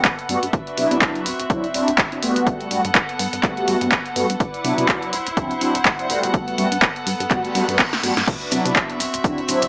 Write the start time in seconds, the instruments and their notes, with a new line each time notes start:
Already playing: string section B3 A4 F#5
0.05 analog synth bass G1, kick, clap, closed hi-hat
0.19 closed hi-hat
0.29 analog synth bass G2, analog polysynth G3 A3 B3 F#4, open hi-hat
0.43 analog synth bass G2, closed hi-hat
0.53 analog synth bass C2, string section D4 F#4 B4 E5, kick, closed hi-hat
0.67 closed hi-hat
0.77 analog synth bass C3, analog polysynth F#3 B3 D4 E4, open hi-hat
0.91 analog synth bass C3, closed hi-hat
1.02 analog synth bass C2, kick, clap, closed hi-hat
1.15 closed hi-hat
1.26 analog synth bass D1, string section C4, open hi-hat
1.39 analog synth bass D1, closed hi-hat
1.50 analog synth bass D2, analog polysynth F#3 C4 D4 E4, kick, closed hi-hat
1.64 closed hi-hat
1.74 analog synth bass D1, analog polysynth F#3 C4 D4 E4, open hi-hat
1.88 analog synth bass D1, closed hi-hat
1.98 analog synth bass D2, kick, clap, closed hi-hat
2.11 analog polysynth F#3 C4 D4 E4, closed hi-hat
2.22 analog synth bass D1, analog polysynth G3 A3 B3 F#4, open hi-hat
2.36 analog synth bass D1, closed hi-hat
2.47 analog synth bass G1, string section B3 A4 F#5, kick, closed hi-hat
2.61 closed hi-hat
2.70 analog synth bass G2, analog polysynth G3 A3 B3 F#4, open hi-hat
2.85 analog synth bass G2, closed hi-hat
2.95 analog synth bass G1, kick, clap, closed hi-hat
3.09 closed hi-hat
3.19 analog synth bass G2, open hi-hat
3.33 analog synth bass G2, closed hi-hat
3.43 analog synth bass G1, analog polysynth G3 A3 B3 F#4, kick, clap, closed hi-hat
3.56 analog polysynth G3 A3 B3 F#4, closed hi-hat
3.67 analog synth bass G2, analog polysynth G3 A3 B3 F#4, open hi-hat
3.81 analog synth bass G2, analog polysynth G3 A3 B3 F#4, closed hi-hat
3.92 analog synth bass G1, kick, clap, closed hi-hat
4.06 closed hi-hat
4.15 analog synth bass G2, analog polysynth G3 A3 B3 F#4, open hi-hat
4.30 analog synth bass G2, closed hi-hat
4.40 analog synth bass C2, string section E4 B4 D5 F#5, kick, closed hi-hat
4.54 closed hi-hat
4.64 analog synth bass C3, analog polysynth F#3 B3 D4 E4, open hi-hat
4.78 analog synth bass C3, closed hi-hat
4.88 kick, clap, closed hi-hat
5.02 closed hi-hat
5.13 analog synth bass D1, string section C5 F#5, open hi-hat
5.27 analog synth bass D1, closed hi-hat
5.36 analog synth bass D2, analog polysynth F#3 C4 D4 E4, kick, closed hi-hat
5.51 closed hi-hat
5.61 analog synth bass D1, analog polysynth F#3 C4 D4 E4, open hi-hat
5.75 analog synth bass D1, closed hi-hat
5.85 analog synth bass D2, kick, clap, closed hi-hat
5.99 analog polysynth F#3 C4 D4 E4, closed hi-hat
6.09 analog synth bass D1, analog polysynth G3 A3 B3 F#4, open hi-hat
6.23 analog synth bass D1, closed hi-hat
6.34 analog synth bass G1, string section B3 A4, kick, closed hi-hat
6.48 closed hi-hat
6.57 analog synth bass G2, analog polysynth G3 A3 B3 F#4, open hi-hat
6.72 analog synth bass G2, closed hi-hat
6.82 analog synth bass G1, kick, clap, closed hi-hat
6.96 closed hi-hat
7.06 analog synth bass G2, open hi-hat
7.20 analog synth bass G2, closed hi-hat
7.30 analog synth bass G1, analog polysynth G3 A3 B3 F#4, kick, clap, closed hi-hat, reverse cymbal
7.44 analog polysynth G3 A3 B3 F#4, closed hi-hat
7.54 analog synth bass G2, analog polysynth G3 A3 B3 F#4, open hi-hat
7.68 analog synth bass G2, analog polysynth G3 A3 B3 F#4, closed hi-hat
7.79 analog synth bass G1, kick, snare, clap, closed hi-hat
7.93 snare, closed hi-hat
8.03 analog synth bass G2, analog polysynth G3 A3 B3 F#4, open hi-hat
8.17 analog synth bass G2, snare, closed hi-hat
8.28 analog synth bass C2, string section D4 F#4 B4 E5, kick, closed hi-hat, crash, sub drop, shaker
8.41 closed hi-hat
8.51 analog synth bass C3, analog polysynth F#3 B3 D4 E4, open hi-hat, shaker
8.65 analog synth bass C3, closed hi-hat, shaker
8.76 analog synth bass C2, kick, clap, closed hi-hat, shaker
8.90 closed hi-hat
9.00 analog synth bass D1, string section C4, open hi-hat, shaker
9.14 analog synth bass D1, closed hi-hat, shaker
9.24 analog synth bass D2, analog polysynth F#3 C4 D4 E4, kick, closed hi-hat, shaker
9.38 closed hi-hat
9.48 analog synth bass D1, analog polysynth F#3 C4 D4 E4, open hi-hat, shaker
9.62 analog synth bass D1, closed hi-hat, shaker